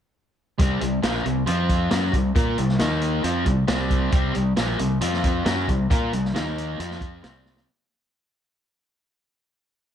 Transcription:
0.59 C2 C3 G3 C4, kick, closed hi-hat
0.81 C2 C3 G3, closed hi-hat
1.03 A#1 A#2 F3 A#3, snare, closed hi-hat
1.25 C2 C3 G3, closed hi-hat
1.47 F2 F3 C4 F4, closed hi-hat
1.69 kick, closed hi-hat
1.91 F#2 F#3 C#4 F#4, snare, closed hi-hat
2.13 C2 C3 G3, kick, closed hi-hat
2.35 A#2 A#3 F4 A#4, kick, closed hi-hat
2.58 C2 C3 G3, closed hi-hat
2.69 snare
2.79 D#2 D#3 A#3 D#4, snare, closed hi-hat
3.01 closed hi-hat
3.24 F2 F3 C4 F4, closed hi-hat
3.46 C2 C3 G3, kick, closed hi-hat
3.67 C2 C3 G3 C4, snare, closed hi-hat
3.91 kick, closed hi-hat
4.12 C2 C3 G3 C4, kick, closed hi-hat
4.35 C2 C3 G3, closed hi-hat
4.57 A#1 A#2 F3 A#3, snare, closed hi-hat
4.79 C2 C3 G3, closed hi-hat
5.01 F2 F3 C4 F4, closed hi-hat
5.13 snare
5.24 kick, closed hi-hat
5.46 F#2 F#3 C#4 F#4, snare, closed hi-hat
5.68 C2 C3 G3, kick, closed hi-hat
5.90 A#2 A#3 F4 A#4, kick, closed hi-hat
6.13 C2 C3 G3, closed hi-hat
6.25 snare
6.35 D#2 D#3 A#3 D#4, snare, closed hi-hat
6.58 closed hi-hat
6.79 F2 F3 C4 F4, closed hi-hat
6.91 snare
7.01 kick, closed hi-hat
7.23 C2 C3 G3 C4, snare, closed hi-hat
7.46 snare
7.57 snare

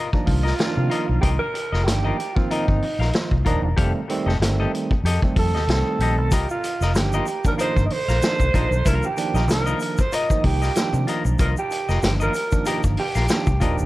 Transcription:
Already playing: D#5
0.13 D#3 F3 A#3 D4, kick
0.26 C2 F4, muted clean electric guitar stroke, kick, open hi-hat
0.43 F4 A#4 D#5, snare
0.59 D#3 F3 A#3 C#4, snare, closed hi-hat
0.67 D4
0.76 C3, muted clean electric guitar stroke
0.90 F4 A#4 D#5, closed hi-hat
1.08 B1, muted clean electric guitar stroke
1.21 C2 F4 G4 A#4 D#5, kick, closed hi-hat
1.39 A#4
1.54 muted clean electric guitar stroke, closed hi-hat
1.72 F1 F4 A#4 D#5, snare
1.84 G1 D#3 F3 A#3 D4 G4, muted clean electric guitar stroke, snare, closed hi-hat
2.04 F4 A#4 D#5
2.18 muted clean electric guitar stroke, closed hi-hat
2.35 D#3 F3 A#3 C4 F4, muted clean electric guitar stroke, kick
2.50 D#4 F4 A#4 D#5, closed hi-hat
2.68 G1, kick
2.82 muted clean electric guitar stroke, open hi-hat
2.99 A#1 F4 A#4 F5, snare
3.13 D#3 F3 A#3 F4, snare, closed hi-hat
3.31 C2, muted clean electric guitar stroke, kick
3.45 D#1 D#3 F3 A#3 D4 F4 A#4 D#5, kick, closed hi-hat
3.62 E1, muted clean electric guitar stroke
3.77 F1 D#3 G3 A3 C4 G4 A4 F5, kick, closed hi-hat
4.08 D#3 G3 A3 C4, muted clean electric guitar stroke, closed hi-hat
4.26 F1 G4 A4 D#5, snare
4.40 G1 D#3 G3 A3 C4, muted clean electric guitar stroke, snare, closed hi-hat
4.60 G4 A4 D#5
4.73 muted clean electric guitar stroke, closed hi-hat
4.91 muted clean electric guitar stroke, kick
5.04 F2 G4 A4 D#5, closed hi-hat
5.22 D#3 G3 A3 C4, kick
5.36 F2 A4, muted clean electric guitar stroke, kick, open hi-hat
5.54 D#2 G4 A4 D#5, snare
5.68 C2 D#3 G3 A3 C4, snare, closed hi-hat
5.87 muted clean electric guitar stroke
5.99 A#1 G4 A4 D#5, closed hi-hat
6.18 B1, muted clean electric guitar stroke
6.31 C2 F4 G4 A#4 D#5, kick, closed hi-hat, shaker
6.49 F4, shaker
6.64 muted clean electric guitar stroke, closed hi-hat, shaker
6.81 F1 F4 A#4 D#5, snare, shaker
6.95 G1 D#3 F3 A#3 D4 G4, muted clean electric guitar stroke, snare, closed hi-hat, shaker
7.13 F4 A#4 D#5, shaker
7.26 muted clean electric guitar stroke, closed hi-hat, shaker
7.45 D3 F3 A#3 D4 A#4, muted clean electric guitar stroke, kick, shaker
7.51 D#3
7.58 F4 A#4 C5 D#5, closed hi-hat, shaker
7.77 G1, kick, shaker
7.86 D#5
7.90 C5, muted clean electric guitar stroke, open hi-hat
8.08 A#1 F4 A#4 F5, snare, shaker
8.22 D#3 F3 A#3 D4, snare, closed hi-hat, shaker
8.40 C2, muted clean electric guitar stroke, kick, shaker
8.54 A#1 D#3 F3 A#3 D4 F4 A#4 D#5, kick, closed hi-hat, shaker
8.71 B1, shaker
8.85 C2 D#3 F3 A#3 D4 F4 A#4 F5, kick, closed hi-hat, shaker
9.03 G4, shaker
9.17 D#3 F3 A#3 D4, muted clean electric guitar stroke, closed hi-hat, shaker
9.34 A#1 F4 A#4 D#5, snare, shaker
9.48 C2 D#3 F3 A#3 D4, muted clean electric guitar stroke, snare, closed hi-hat, shaker
9.52 A#4
9.66 F4 A#4 D#5, shaker
9.80 muted clean electric guitar stroke, closed hi-hat, shaker
9.98 C5, muted clean electric guitar stroke, kick, shaker
10.12 F4 A#4 D#5, closed hi-hat, shaker
10.30 D#3 F3 A#3 D#4, kick, shaker
10.44 C2 G4, muted clean electric guitar stroke, kick, open hi-hat
10.62 F4 A#4 D#5, snare, shaker
10.75 D#3 F3 A#3 D4, snare, closed hi-hat, shaker
10.93 C3, muted clean electric guitar stroke, shaker
11.07 F4 A#4 D#5, closed hi-hat, shaker
11.25 B1, muted clean electric guitar stroke, shaker
11.39 C2 F4 A#4 D#5, kick, closed hi-hat, shaker
11.57 G4, shaker
11.71 muted clean electric guitar stroke, closed hi-hat, shaker
11.89 F1 F4 A#4 D#5, snare, shaker
12.02 G1 D#3 F3 A#3 D4 G4, muted clean electric guitar stroke, snare, closed hi-hat, shaker
12.20 F4 A#4 D#5, shaker
12.34 muted clean electric guitar stroke, closed hi-hat, shaker
12.51 D#3 F3 A#3 D4, muted clean electric guitar stroke, kick, shaker
12.66 F4 G4 A#4 D#5, closed hi-hat, shaker
12.84 G1, kick, shaker
12.97 G4, muted clean electric guitar stroke, open hi-hat
13.15 A#1 F4 A#4 F5, snare, shaker
13.28 D#3 F3 A#3 D4, snare, closed hi-hat, shaker
13.47 C2, muted clean electric guitar stroke, kick, shaker
13.60 D#1 D#3 F3 A#3 D4 F4 A#4 D#5, kick, closed hi-hat, shaker
13.78 E1, muted clean electric guitar stroke, shaker

